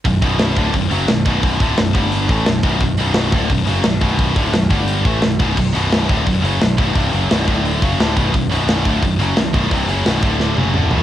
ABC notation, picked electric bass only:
X:1
M:4/4
L:1/8
Q:1/4=174
K:Bm
V:1 name="Picked electric bass" clef=bass
B,,,, B,,,,2 D,,, B,,,, F,,, B,,,, B,,,,- | B,,,, D,,, B,,,, G,,,2 A,,, B,,,, B,,,, | B,,,, B,,,,2 D,,, B,,,, F,,, B,,,, B,,,,- | B,,,, D,,, B,,,, G,,,2 A,,, B,,,, B,,,, |
B,,,, B,,,,2 D,,, B,,,, F,,, B,,,, B,,,, | =C,,, F,,, B,,,, D,,,2 F,,, D,,, B,,,, | B,,,, B,,,,2 D,,, B,,,, F,,, B,,,, B,,,, | =C,,, F,,, B,,,, D,,,2 F,,, D,,, B,,,, |]